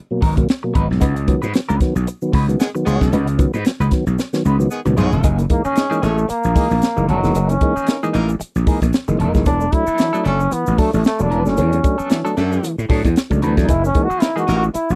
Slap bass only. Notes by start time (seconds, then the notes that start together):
0.22 G#1
0.75 G#1
0.91 B1
1.02 C#2
1.43 G#2
1.70 C#2
1.96 B1
2.34 C#2
2.87 C#2
3.01 B1
3.13 C#2
3.54 G#2
3.80 C#2
4.07 B1
4.45 C#2
4.86 C#2
4.98 B1
5.13 E1
5.24 F#1
5.65 muted slap bass stroke
6.03 A1
6.30 muted slap bass stroke
6.45 A#1
6.71 A#1
6.97 F#1
7.09 F#1
7.24 E1
7.35 F#1
7.77 muted slap bass stroke
8.15 A1
8.41 muted slap bass stroke
8.56 A#1
8.82 A#1
9.08 F#1
9.20 E1
9.35 F#1
9.46 E1
9.88 muted slap bass stroke
10.26 F#1
10.52 muted slap bass stroke
10.67 A1
10.94 A1
11.20 E1
11.32 E1
11.47 F#1
11.58 E2
12.00 muted slap bass stroke
12.37 F#2
12.78 A2
12.90 A2
13.05 E2
13.31 C#2
13.43 D2
13.58 E2
13.69 F#1
14.10 muted slap bass stroke
14.48 A1
14.75 muted slap bass stroke
14.90 A#1